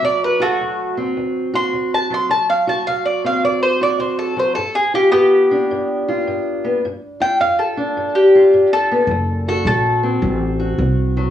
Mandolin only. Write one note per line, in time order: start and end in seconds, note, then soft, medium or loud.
0.05 0.22 D5 loud
0.24 0.42 B4 medium
0.42 0.94 A3 medium
0.42 0.97 F#4 medium
1.55 1.92 C6 loud
1.94 2.12 A5 medium
2.14 2.30 C6 medium
2.31 2.49 A5 medium
2.50 2.67 F5 medium
2.69 2.87 A5 medium
2.87 3.05 F5 medium
3.06 3.24 D5 medium
3.26 3.43 F5 medium
3.45 3.62 D5 medium
3.63 3.80 C5 medium
3.83 3.99 D5 medium
4.00 4.18 C5 medium
4.19 4.37 A4 medium
4.39 4.55 C5 medium
4.55 4.73 A4 medium
4.75 4.93 G#4 medium
4.95 5.11 G4 medium
5.11 6.77 B3 medium
5.11 6.77 G4 medium
7.22 7.39 G5 loud
7.41 7.58 F5 medium
7.59 8.13 A4 medium
8.15 8.70 G4 medium
8.73 9.46 A4 loud
9.49 9.66 A4 medium
9.67 10.77 A4 medium